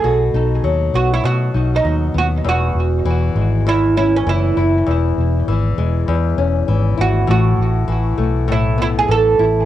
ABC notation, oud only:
X:1
M:4/4
L:1/16
Q:"Swing 16ths" 1/4=99
K:E
V:1 name="Oud"
G z4 z F E F3 D3 F2 | F8 E2 E C E3 z | z12 z2 F2 | F8 E2 E G A3 z |]